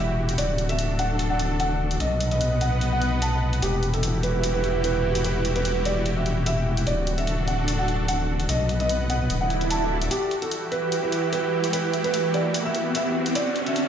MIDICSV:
0, 0, Header, 1, 7, 480
1, 0, Start_track
1, 0, Key_signature, 1, "minor"
1, 0, Tempo, 405405
1, 451, Time_signature, 4, 2, 24, 8
1, 16435, End_track
2, 0, Start_track
2, 0, Title_t, "Felt piano"
2, 0, Program_c, 0, 0
2, 0, Note_on_c, 0, 76, 87
2, 330, Note_off_c, 0, 76, 0
2, 452, Note_on_c, 0, 74, 88
2, 716, Note_off_c, 0, 74, 0
2, 822, Note_on_c, 0, 76, 89
2, 1082, Note_off_c, 0, 76, 0
2, 1172, Note_on_c, 0, 78, 84
2, 1436, Note_off_c, 0, 78, 0
2, 1541, Note_on_c, 0, 78, 81
2, 1802, Note_off_c, 0, 78, 0
2, 1893, Note_on_c, 0, 78, 92
2, 2251, Note_off_c, 0, 78, 0
2, 2373, Note_on_c, 0, 75, 89
2, 2636, Note_off_c, 0, 75, 0
2, 2741, Note_on_c, 0, 75, 81
2, 3002, Note_off_c, 0, 75, 0
2, 3094, Note_on_c, 0, 78, 85
2, 3357, Note_off_c, 0, 78, 0
2, 3462, Note_on_c, 0, 78, 80
2, 3722, Note_off_c, 0, 78, 0
2, 3813, Note_on_c, 0, 81, 83
2, 4170, Note_off_c, 0, 81, 0
2, 4292, Note_on_c, 0, 67, 86
2, 4556, Note_off_c, 0, 67, 0
2, 4659, Note_on_c, 0, 69, 85
2, 4921, Note_off_c, 0, 69, 0
2, 5011, Note_on_c, 0, 71, 88
2, 5276, Note_off_c, 0, 71, 0
2, 5380, Note_on_c, 0, 71, 84
2, 5641, Note_off_c, 0, 71, 0
2, 5733, Note_on_c, 0, 71, 85
2, 6091, Note_off_c, 0, 71, 0
2, 6213, Note_on_c, 0, 71, 93
2, 6476, Note_off_c, 0, 71, 0
2, 6582, Note_on_c, 0, 71, 83
2, 6842, Note_off_c, 0, 71, 0
2, 6933, Note_on_c, 0, 74, 91
2, 7196, Note_off_c, 0, 74, 0
2, 7302, Note_on_c, 0, 76, 78
2, 7562, Note_off_c, 0, 76, 0
2, 7652, Note_on_c, 0, 76, 94
2, 8010, Note_off_c, 0, 76, 0
2, 8133, Note_on_c, 0, 74, 96
2, 8396, Note_off_c, 0, 74, 0
2, 8501, Note_on_c, 0, 76, 84
2, 8762, Note_off_c, 0, 76, 0
2, 8852, Note_on_c, 0, 78, 87
2, 9116, Note_off_c, 0, 78, 0
2, 9221, Note_on_c, 0, 78, 85
2, 9482, Note_off_c, 0, 78, 0
2, 9573, Note_on_c, 0, 78, 92
2, 9930, Note_off_c, 0, 78, 0
2, 10050, Note_on_c, 0, 75, 93
2, 10315, Note_off_c, 0, 75, 0
2, 10419, Note_on_c, 0, 75, 85
2, 10681, Note_off_c, 0, 75, 0
2, 10770, Note_on_c, 0, 78, 91
2, 11035, Note_off_c, 0, 78, 0
2, 11139, Note_on_c, 0, 78, 84
2, 11401, Note_off_c, 0, 78, 0
2, 11490, Note_on_c, 0, 81, 89
2, 11849, Note_off_c, 0, 81, 0
2, 11970, Note_on_c, 0, 67, 92
2, 12235, Note_off_c, 0, 67, 0
2, 12340, Note_on_c, 0, 69, 88
2, 12601, Note_off_c, 0, 69, 0
2, 12689, Note_on_c, 0, 71, 92
2, 12955, Note_off_c, 0, 71, 0
2, 13059, Note_on_c, 0, 71, 80
2, 13320, Note_off_c, 0, 71, 0
2, 13410, Note_on_c, 0, 71, 88
2, 13769, Note_off_c, 0, 71, 0
2, 13890, Note_on_c, 0, 71, 93
2, 14155, Note_off_c, 0, 71, 0
2, 14259, Note_on_c, 0, 71, 85
2, 14520, Note_off_c, 0, 71, 0
2, 14612, Note_on_c, 0, 74, 92
2, 14876, Note_off_c, 0, 74, 0
2, 14980, Note_on_c, 0, 76, 86
2, 15241, Note_off_c, 0, 76, 0
2, 15334, Note_on_c, 0, 76, 94
2, 15691, Note_off_c, 0, 76, 0
2, 15812, Note_on_c, 0, 74, 96
2, 16076, Note_off_c, 0, 74, 0
2, 16179, Note_on_c, 0, 76, 87
2, 16435, Note_off_c, 0, 76, 0
2, 16435, End_track
3, 0, Start_track
3, 0, Title_t, "Supersaw synth"
3, 0, Program_c, 1, 81
3, 0, Note_on_c, 1, 64, 76
3, 0, Note_on_c, 1, 66, 68
3, 0, Note_on_c, 1, 67, 85
3, 411, Note_off_c, 1, 67, 0
3, 412, Note_off_c, 1, 64, 0
3, 452, Note_on_c, 1, 62, 75
3, 452, Note_on_c, 1, 69, 86
3, 2322, Note_off_c, 1, 66, 0
3, 2352, Note_off_c, 1, 62, 0
3, 2352, Note_off_c, 1, 69, 0
3, 2369, Note_on_c, 1, 59, 78
3, 2369, Note_on_c, 1, 71, 71
3, 2369, Note_on_c, 1, 78, 81
3, 2370, Note_on_c, 1, 75, 68
3, 4271, Note_off_c, 1, 59, 0
3, 4271, Note_off_c, 1, 71, 0
3, 4271, Note_off_c, 1, 75, 0
3, 4271, Note_off_c, 1, 78, 0
3, 4289, Note_on_c, 1, 67, 80
3, 4290, Note_on_c, 1, 66, 68
3, 4291, Note_on_c, 1, 64, 77
3, 8092, Note_off_c, 1, 66, 0
3, 8092, Note_off_c, 1, 67, 0
3, 8093, Note_off_c, 1, 64, 0
3, 8129, Note_on_c, 1, 66, 73
3, 8130, Note_on_c, 1, 62, 75
3, 8130, Note_on_c, 1, 69, 85
3, 10031, Note_off_c, 1, 62, 0
3, 10031, Note_off_c, 1, 66, 0
3, 10031, Note_off_c, 1, 69, 0
3, 10049, Note_on_c, 1, 71, 65
3, 10049, Note_on_c, 1, 75, 66
3, 10049, Note_on_c, 1, 78, 85
3, 10050, Note_on_c, 1, 59, 73
3, 11000, Note_off_c, 1, 75, 0
3, 11001, Note_off_c, 1, 59, 0
3, 11001, Note_off_c, 1, 71, 0
3, 11001, Note_off_c, 1, 78, 0
3, 11011, Note_on_c, 1, 66, 73
3, 11012, Note_on_c, 1, 69, 70
3, 11012, Note_on_c, 1, 74, 80
3, 11958, Note_off_c, 1, 66, 0
3, 11962, Note_off_c, 1, 69, 0
3, 11962, Note_off_c, 1, 74, 0
3, 11971, Note_on_c, 1, 67, 90
3, 11972, Note_on_c, 1, 52, 76
3, 11972, Note_on_c, 1, 64, 71
3, 11972, Note_on_c, 1, 66, 76
3, 15773, Note_off_c, 1, 52, 0
3, 15773, Note_off_c, 1, 64, 0
3, 15773, Note_off_c, 1, 67, 0
3, 15810, Note_on_c, 1, 50, 77
3, 15811, Note_on_c, 1, 62, 72
3, 15811, Note_on_c, 1, 69, 92
3, 16435, Note_off_c, 1, 50, 0
3, 16435, Note_off_c, 1, 62, 0
3, 16435, Note_off_c, 1, 66, 0
3, 16435, Note_off_c, 1, 69, 0
3, 16435, End_track
4, 0, Start_track
4, 0, Title_t, "Wobble bass"
4, 0, Program_c, 2, 39
4, 0, Note_on_c, 2, 28, 84
4, 429, Note_off_c, 2, 28, 0
4, 452, Note_on_c, 2, 26, 90
4, 2350, Note_off_c, 2, 26, 0
4, 2371, Note_on_c, 2, 35, 83
4, 4269, Note_off_c, 2, 35, 0
4, 4291, Note_on_c, 2, 28, 85
4, 8109, Note_off_c, 2, 28, 0
4, 8131, Note_on_c, 2, 26, 89
4, 10029, Note_off_c, 2, 26, 0
4, 10052, Note_on_c, 2, 35, 87
4, 10989, Note_off_c, 2, 35, 0
4, 11011, Note_on_c, 2, 26, 82
4, 11949, Note_off_c, 2, 26, 0
4, 16435, End_track
5, 0, Start_track
5, 0, Title_t, "Riser"
5, 0, Program_c, 3, 103
5, 11971, Note_on_c, 3, 60, 73
5, 16435, Note_off_c, 3, 60, 0
5, 16435, End_track
6, 0, Start_track
6, 0, Title_t, "Swell"
6, 0, Program_c, 4, 103
6, 11011, Note_on_c, 4, 60, 75
6, 11971, Note_off_c, 4, 60, 0
6, 16435, End_track
7, 0, Start_track
7, 0, Title_t, "Drums"
7, 341, Note_on_c, 9, 42, 63
7, 451, Note_off_c, 9, 42, 0
7, 451, Note_on_c, 9, 42, 72
7, 570, Note_off_c, 9, 42, 0
7, 691, Note_on_c, 9, 42, 49
7, 810, Note_off_c, 9, 42, 0
7, 820, Note_on_c, 9, 42, 36
7, 931, Note_off_c, 9, 42, 0
7, 931, Note_on_c, 9, 42, 76
7, 1049, Note_off_c, 9, 42, 0
7, 1171, Note_on_c, 9, 42, 45
7, 1289, Note_off_c, 9, 42, 0
7, 1411, Note_on_c, 9, 42, 76
7, 1529, Note_off_c, 9, 42, 0
7, 1651, Note_on_c, 9, 42, 50
7, 1769, Note_off_c, 9, 42, 0
7, 1891, Note_on_c, 9, 42, 79
7, 2010, Note_off_c, 9, 42, 0
7, 2260, Note_on_c, 9, 42, 57
7, 2371, Note_off_c, 9, 42, 0
7, 2371, Note_on_c, 9, 42, 73
7, 2489, Note_off_c, 9, 42, 0
7, 2610, Note_on_c, 9, 42, 48
7, 2729, Note_off_c, 9, 42, 0
7, 2740, Note_on_c, 9, 42, 31
7, 2850, Note_off_c, 9, 42, 0
7, 2850, Note_on_c, 9, 42, 72
7, 2969, Note_off_c, 9, 42, 0
7, 3090, Note_on_c, 9, 42, 44
7, 3209, Note_off_c, 9, 42, 0
7, 3330, Note_on_c, 9, 42, 72
7, 3449, Note_off_c, 9, 42, 0
7, 3571, Note_on_c, 9, 42, 49
7, 3689, Note_off_c, 9, 42, 0
7, 3811, Note_on_c, 9, 42, 73
7, 3929, Note_off_c, 9, 42, 0
7, 4180, Note_on_c, 9, 42, 58
7, 4291, Note_off_c, 9, 42, 0
7, 4291, Note_on_c, 9, 42, 70
7, 4409, Note_off_c, 9, 42, 0
7, 4531, Note_on_c, 9, 42, 45
7, 4650, Note_off_c, 9, 42, 0
7, 4660, Note_on_c, 9, 42, 32
7, 4771, Note_off_c, 9, 42, 0
7, 4771, Note_on_c, 9, 42, 72
7, 4890, Note_off_c, 9, 42, 0
7, 5011, Note_on_c, 9, 42, 41
7, 5130, Note_off_c, 9, 42, 0
7, 5251, Note_on_c, 9, 42, 70
7, 5369, Note_off_c, 9, 42, 0
7, 5491, Note_on_c, 9, 42, 45
7, 5610, Note_off_c, 9, 42, 0
7, 5731, Note_on_c, 9, 42, 72
7, 5850, Note_off_c, 9, 42, 0
7, 6100, Note_on_c, 9, 42, 56
7, 6210, Note_off_c, 9, 42, 0
7, 6210, Note_on_c, 9, 42, 70
7, 6328, Note_off_c, 9, 42, 0
7, 6450, Note_on_c, 9, 42, 49
7, 6568, Note_off_c, 9, 42, 0
7, 6579, Note_on_c, 9, 42, 31
7, 6691, Note_off_c, 9, 42, 0
7, 6691, Note_on_c, 9, 42, 73
7, 6809, Note_off_c, 9, 42, 0
7, 6931, Note_on_c, 9, 42, 43
7, 7050, Note_off_c, 9, 42, 0
7, 7171, Note_on_c, 9, 42, 68
7, 7290, Note_off_c, 9, 42, 0
7, 7411, Note_on_c, 9, 42, 44
7, 7529, Note_off_c, 9, 42, 0
7, 7651, Note_on_c, 9, 42, 69
7, 7770, Note_off_c, 9, 42, 0
7, 8019, Note_on_c, 9, 42, 55
7, 8131, Note_off_c, 9, 42, 0
7, 8131, Note_on_c, 9, 42, 69
7, 8249, Note_off_c, 9, 42, 0
7, 8371, Note_on_c, 9, 42, 49
7, 8489, Note_off_c, 9, 42, 0
7, 8500, Note_on_c, 9, 42, 32
7, 8611, Note_off_c, 9, 42, 0
7, 8611, Note_on_c, 9, 42, 73
7, 8730, Note_off_c, 9, 42, 0
7, 8852, Note_on_c, 9, 42, 44
7, 8970, Note_off_c, 9, 42, 0
7, 9091, Note_on_c, 9, 42, 72
7, 9210, Note_off_c, 9, 42, 0
7, 9332, Note_on_c, 9, 42, 46
7, 9450, Note_off_c, 9, 42, 0
7, 9571, Note_on_c, 9, 42, 72
7, 9690, Note_off_c, 9, 42, 0
7, 9941, Note_on_c, 9, 42, 57
7, 10052, Note_off_c, 9, 42, 0
7, 10052, Note_on_c, 9, 42, 75
7, 10170, Note_off_c, 9, 42, 0
7, 10292, Note_on_c, 9, 42, 53
7, 10410, Note_off_c, 9, 42, 0
7, 10420, Note_on_c, 9, 42, 33
7, 10531, Note_off_c, 9, 42, 0
7, 10531, Note_on_c, 9, 42, 78
7, 10649, Note_off_c, 9, 42, 0
7, 10771, Note_on_c, 9, 42, 47
7, 10889, Note_off_c, 9, 42, 0
7, 11011, Note_on_c, 9, 42, 80
7, 11129, Note_off_c, 9, 42, 0
7, 11251, Note_on_c, 9, 42, 50
7, 11369, Note_off_c, 9, 42, 0
7, 11379, Note_on_c, 9, 42, 36
7, 11490, Note_off_c, 9, 42, 0
7, 11490, Note_on_c, 9, 42, 76
7, 11609, Note_off_c, 9, 42, 0
7, 11858, Note_on_c, 9, 42, 62
7, 11970, Note_off_c, 9, 42, 0
7, 11970, Note_on_c, 9, 42, 77
7, 12088, Note_off_c, 9, 42, 0
7, 12210, Note_on_c, 9, 42, 51
7, 12328, Note_off_c, 9, 42, 0
7, 12339, Note_on_c, 9, 42, 36
7, 12450, Note_off_c, 9, 42, 0
7, 12450, Note_on_c, 9, 42, 82
7, 12568, Note_off_c, 9, 42, 0
7, 12690, Note_on_c, 9, 42, 47
7, 12808, Note_off_c, 9, 42, 0
7, 12930, Note_on_c, 9, 42, 76
7, 13048, Note_off_c, 9, 42, 0
7, 13170, Note_on_c, 9, 42, 52
7, 13288, Note_off_c, 9, 42, 0
7, 13410, Note_on_c, 9, 42, 79
7, 13529, Note_off_c, 9, 42, 0
7, 13779, Note_on_c, 9, 42, 62
7, 13891, Note_off_c, 9, 42, 0
7, 13891, Note_on_c, 9, 42, 79
7, 14009, Note_off_c, 9, 42, 0
7, 14131, Note_on_c, 9, 42, 53
7, 14250, Note_off_c, 9, 42, 0
7, 14259, Note_on_c, 9, 42, 36
7, 14371, Note_off_c, 9, 42, 0
7, 14371, Note_on_c, 9, 42, 85
7, 14489, Note_off_c, 9, 42, 0
7, 14611, Note_on_c, 9, 42, 50
7, 14730, Note_off_c, 9, 42, 0
7, 14851, Note_on_c, 9, 42, 80
7, 14970, Note_off_c, 9, 42, 0
7, 15091, Note_on_c, 9, 42, 53
7, 15210, Note_off_c, 9, 42, 0
7, 15331, Note_on_c, 9, 42, 78
7, 15449, Note_off_c, 9, 42, 0
7, 15700, Note_on_c, 9, 42, 62
7, 15810, Note_off_c, 9, 42, 0
7, 15810, Note_on_c, 9, 42, 81
7, 15929, Note_off_c, 9, 42, 0
7, 16051, Note_on_c, 9, 42, 53
7, 16169, Note_off_c, 9, 42, 0
7, 16179, Note_on_c, 9, 42, 36
7, 16291, Note_off_c, 9, 42, 0
7, 16291, Note_on_c, 9, 42, 82
7, 16409, Note_off_c, 9, 42, 0
7, 16435, End_track
0, 0, End_of_file